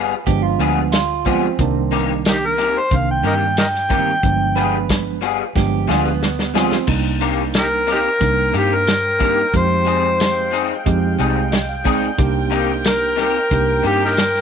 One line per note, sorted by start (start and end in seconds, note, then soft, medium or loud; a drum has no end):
0.00 0.12 G1 medium
0.00 0.13 G3 medium
0.00 0.13 B3 medium
0.00 0.14 F4 medium
0.00 0.14 G#4 medium
0.00 0.23 B4 loud
0.26 0.56 G1 medium
0.26 0.97 F3 loud
0.26 0.97 G#3 medium
0.26 0.97 B3 medium
0.26 0.97 D4 loud
0.26 0.42 G4 loud
0.26 kick medium
0.26 closed hi-hat medium
0.42 0.59 F4 medium
0.59 1.47 D2 medium
0.59 0.79 G3 medium
0.59 0.92 B3 medium
0.59 0.80 B3 medium
0.59 0.80 F4 medium
0.59 0.80 G#4 medium
0.59 closed hi-hat medium
0.92 1.24 F4 medium
0.92 snare loud
0.92 closed hi-hat medium
0.92 tambourine loud
1.25 1.49 F3 medium
1.25 1.45 G3 medium
1.25 1.49 G#3 medium
1.25 1.46 B3 medium
1.25 1.50 B3 medium
1.25 2.06 C4 medium
1.25 1.46 F4 medium
1.25 1.50 F4 loud
1.25 1.46 G#4 medium
1.25 kick medium
1.25 closed hi-hat medium
1.59 2.76 C2 medium
1.59 2.53 D#3 loud
1.59 2.53 G3 medium
1.59 2.53 A#3 medium
1.59 2.54 D4 loud
1.59 kick loud
1.59 closed hi-hat medium
1.91 2.11 C3 medium
1.91 2.12 A#3 medium
1.91 2.12 D#4 medium
1.91 2.12 G4 medium
1.91 closed hi-hat medium
2.25 2.36 A#3 medium
2.25 2.37 D#4 medium
2.25 2.47 G4 medium
2.25 snare loud
2.25 closed hi-hat medium
2.25 tambourine loud
2.46 2.80 A#4 medium
2.57 2.77 C3 medium
2.57 2.78 A#3 medium
2.57 2.78 D#4 medium
2.57 2.78 G4 medium
2.57 snare soft
2.57 closed hi-hat medium
2.79 2.97 C5 medium
2.91 3.21 C2 medium
2.91 3.62 D#3 medium
2.91 3.62 G3 medium
2.91 3.62 A#3 medium
2.91 3.62 D4 medium
2.91 kick medium
2.91 closed hi-hat medium
2.96 3.09 F5 medium
3.11 3.25 G5 medium
3.23 4.12 G2 medium
3.23 3.44 C3 medium
3.23 3.44 A#3 medium
3.23 3.44 D#4 medium
3.23 3.44 G4 medium
3.23 3.34 A#4 medium
3.23 3.33 D#5 medium
3.23 3.57 G5 medium
3.23 closed hi-hat medium
3.57 3.65 A#4 medium
3.57 3.67 D#5 medium
3.57 4.87 G5 loud
3.57 snare loud
3.57 closed hi-hat medium
3.57 tambourine loud
3.75 snare soft
3.89 4.10 C3 medium
3.89 4.14 D#3 medium
3.89 4.14 G3 medium
3.89 4.10 A#3 medium
3.89 4.14 A#3 medium
3.89 4.14 C4 medium
3.89 4.10 D#4 medium
3.89 4.10 G4 medium
3.89 kick medium
3.89 closed hi-hat medium
4.23 5.41 G1 medium
4.23 5.18 F3 medium
4.23 5.18 G#3 medium
4.23 5.18 B3 medium
4.23 5.18 D4 medium
4.23 kick loud
4.23 closed hi-hat medium
4.56 4.76 G3 medium
4.56 4.76 B3 medium
4.56 4.77 F4 medium
4.56 4.77 G#4 medium
4.56 5.53 B4 medium
4.56 closed hi-hat medium
4.89 kick medium
4.89 snare loud
4.89 closed hi-hat medium
4.89 tambourine medium
5.21 5.42 G3 medium
5.21 5.42 B3 medium
5.21 5.43 F4 medium
5.21 5.43 G#4 medium
5.21 closed hi-hat medium
5.55 5.85 G1 medium
5.55 6.27 F3 medium
5.55 6.27 G#3 medium
5.55 6.27 B3 medium
5.55 6.27 D4 medium
5.55 5.88 G4 medium
5.55 kick medium
5.55 snare medium
5.88 6.77 D2 medium
5.88 6.08 G3 medium
5.88 6.08 B3 medium
5.88 6.09 F4 medium
5.88 6.05 F4 medium
5.88 6.09 G#4 medium
5.88 snare medium
6.05 6.54 B3 medium
6.23 snare medium
6.39 snare medium
6.54 6.78 F3 medium
6.54 6.75 G3 medium
6.54 6.78 G#3 medium
6.54 6.75 B3 medium
6.54 6.79 B3 medium
6.54 6.87 C4 medium
6.54 6.79 F4 medium
6.54 6.75 F4 medium
6.54 6.75 G#4 medium
6.54 snare medium
6.72 snare medium
6.87 8.06 C2 loud
6.87 7.82 G3 medium
6.87 7.82 A#3 medium
6.87 7.83 D4 medium
6.87 7.82 D#4 loud
6.87 9.51 A#4 medium
6.87 9.51 C5 medium
6.87 14.41 G5 medium
6.87 kick loud
6.87 crash medium
7.21 7.41 C3 medium
7.21 7.41 A#3 medium
7.21 7.42 D#4 medium
7.21 7.42 G4 medium
7.21 closed hi-hat medium
7.54 snare loud
7.54 closed hi-hat medium
7.54 tambourine medium
7.59 7.66 D#4 medium
7.59 7.67 G4 medium
7.59 7.89 A#4 medium
7.87 8.07 C3 medium
7.87 8.07 A#3 medium
7.87 8.07 D#4 medium
7.87 8.08 G4 medium
7.87 snare soft
7.87 closed hi-hat medium
7.92 8.00 D#4 medium
7.92 7.98 G4 medium
7.92 8.54 A#4 loud
8.20 8.50 C2 medium
8.20 8.91 G3 medium
8.20 8.91 A#3 medium
8.20 8.92 D4 medium
8.20 8.91 D#4 medium
8.20 kick medium
8.20 closed hi-hat medium
8.53 9.42 G2 medium
8.53 8.73 C3 medium
8.53 8.74 A#3 medium
8.53 8.74 D#4 medium
8.53 8.74 G4 medium
8.53 closed hi-hat medium
8.57 8.76 G4 medium
8.75 9.53 A#4 medium
8.87 snare loud
8.87 closed hi-hat medium
8.87 tambourine loud
9.19 9.40 C3 medium
9.19 9.44 G3 medium
9.19 9.40 A#3 medium
9.19 9.44 A#3 medium
9.19 9.44 D4 medium
9.19 9.40 D#4 medium
9.19 9.44 D#4 medium
9.19 9.40 G4 medium
9.19 kick medium
9.19 closed hi-hat medium
9.53 10.71 F2 medium
9.53 10.47 G#3 medium
9.53 12.17 G#3 medium
9.53 10.47 C4 medium
9.53 10.48 D#4 medium
9.53 10.48 G4 medium
9.53 10.84 C5 loud
9.53 12.16 F5 medium
9.53 kick loud
9.53 closed hi-hat medium
9.85 10.06 F3 medium
9.85 10.06 C4 medium
9.85 10.06 D#4 medium
9.85 10.07 G#4 medium
9.85 closed hi-hat medium
10.20 snare loud
10.20 closed hi-hat medium
10.20 tambourine loud
10.51 10.72 F3 medium
10.51 10.72 C4 medium
10.51 10.73 D#4 medium
10.51 10.73 G#4 medium
10.51 closed hi-hat medium
10.86 11.16 F2 medium
10.86 11.56 G#3 loud
10.86 11.57 C4 medium
10.86 11.57 D#4 medium
10.86 11.57 G4 medium
10.86 kick medium
10.86 closed hi-hat medium
11.19 12.07 C2 medium
11.19 11.39 F3 medium
11.19 11.39 C4 medium
11.19 11.39 D#4 medium
11.19 11.40 G#4 medium
11.19 11.35 G5 medium
11.19 closed hi-hat medium
11.35 11.51 F5 medium
11.52 11.67 D#5 medium
11.52 snare loud
11.52 closed hi-hat medium
11.52 tambourine medium
11.69 11.84 F5 medium
11.84 12.05 F3 medium
11.84 12.09 G#3 medium
11.84 12.05 C4 medium
11.84 12.09 C4 medium
11.84 12.05 D#4 medium
11.84 12.09 D#4 medium
11.84 12.05 G#4 medium
11.84 12.09 G#4 medium
11.84 12.17 D5 medium
11.84 kick medium
11.84 closed hi-hat medium
12.18 13.36 C2 loud
12.18 13.12 A#3 medium
12.18 13.12 D4 medium
12.18 13.12 D#4 medium
12.18 13.12 G4 loud
12.18 14.41 A#4 medium
12.18 14.41 C5 medium
12.18 kick loud
12.18 closed hi-hat medium
12.50 12.71 C3 medium
12.50 12.71 A#3 medium
12.50 12.71 D#4 medium
12.50 12.72 G4 medium
12.50 closed hi-hat medium
12.84 13.18 A#4 medium
12.84 snare loud
12.84 closed hi-hat medium
12.84 tambourine loud
13.16 13.37 C3 medium
13.16 13.37 A#3 medium
13.16 13.37 D#4 medium
13.16 13.37 G4 medium
13.16 snare soft
13.16 closed hi-hat medium
13.22 13.84 A#4 medium
13.51 13.80 C2 medium
13.51 14.22 A#3 medium
13.51 14.22 D4 medium
13.51 14.22 D#4 medium
13.51 14.22 G4 medium
13.51 kick medium
13.51 closed hi-hat medium
13.83 14.41 G2 medium
13.83 14.03 C3 medium
13.83 14.03 A#3 medium
13.83 14.04 D#4 medium
13.83 14.04 G4 medium
13.83 closed hi-hat medium
13.87 14.01 G4 medium
14.05 14.14 D#4 medium
14.05 14.13 G4 medium
14.05 14.41 A#4 medium
14.17 snare medium
14.17 closed hi-hat medium
14.17 tambourine loud
14.35 snare soft